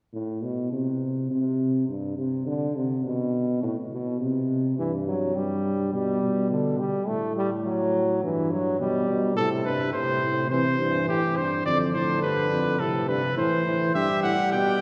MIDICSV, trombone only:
0, 0, Header, 1, 2, 480
1, 0, Start_track
1, 0, Key_signature, 0, "minor"
1, 0, Tempo, 583090
1, 110, Time_signature, 4, 2, 24, 8
1, 3469, Tempo, 573066
1, 12346, End_track
2, 0, Start_track
2, 0, Title_t, "Trombone"
2, 0, Program_c, 0, 57
2, 3946, Note_on_c, 0, 52, 74
2, 4055, Note_off_c, 0, 52, 0
2, 4189, Note_on_c, 0, 54, 73
2, 4429, Note_on_c, 0, 55, 81
2, 4442, Note_off_c, 0, 54, 0
2, 4905, Note_off_c, 0, 55, 0
2, 4910, Note_on_c, 0, 55, 73
2, 5381, Note_off_c, 0, 55, 0
2, 5390, Note_on_c, 0, 50, 68
2, 5625, Note_off_c, 0, 50, 0
2, 5631, Note_on_c, 0, 55, 78
2, 5868, Note_on_c, 0, 57, 76
2, 5880, Note_off_c, 0, 55, 0
2, 6107, Note_off_c, 0, 57, 0
2, 6113, Note_on_c, 0, 55, 83
2, 6220, Note_off_c, 0, 55, 0
2, 6351, Note_on_c, 0, 54, 86
2, 6822, Note_off_c, 0, 54, 0
2, 6832, Note_on_c, 0, 52, 73
2, 7072, Note_on_c, 0, 54, 80
2, 7085, Note_off_c, 0, 52, 0
2, 7306, Note_off_c, 0, 54, 0
2, 7311, Note_on_c, 0, 55, 78
2, 7776, Note_off_c, 0, 55, 0
2, 7785, Note_on_c, 0, 48, 67
2, 8252, Note_off_c, 0, 48, 0
2, 8262, Note_on_c, 0, 48, 65
2, 8729, Note_off_c, 0, 48, 0
2, 8736, Note_on_c, 0, 52, 60
2, 8844, Note_off_c, 0, 52, 0
2, 8974, Note_on_c, 0, 52, 64
2, 9456, Note_off_c, 0, 52, 0
2, 9696, Note_on_c, 0, 50, 72
2, 10655, Note_on_c, 0, 48, 60
2, 10667, Note_off_c, 0, 50, 0
2, 11136, Note_on_c, 0, 52, 66
2, 11148, Note_off_c, 0, 48, 0
2, 11375, Note_off_c, 0, 52, 0
2, 11380, Note_on_c, 0, 52, 66
2, 11617, Note_off_c, 0, 52, 0
2, 11622, Note_on_c, 0, 55, 75
2, 12346, Note_off_c, 0, 55, 0
2, 12346, End_track
0, 0, End_of_file